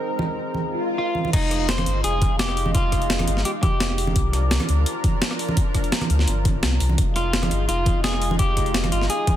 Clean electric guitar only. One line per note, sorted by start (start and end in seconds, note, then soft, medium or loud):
0.00 0.94 D#4 medium
0.98 1.33 F4 medium
1.33 1.70 D#4 loud
1.69 2.02 C5 loud
2.04 2.39 G#4 loud
2.39 2.74 G4 loud
2.75 3.45 F4 loud
3.45 3.50 G4 loud
3.63 5.00 G4 medium
7.16 7.67 F4 medium
7.69 8.01 F4 loud
8.04 8.39 G#4 medium
8.39 8.92 G4 loud
8.92 9.09 F4 medium
9.10 9.36 G#4 loud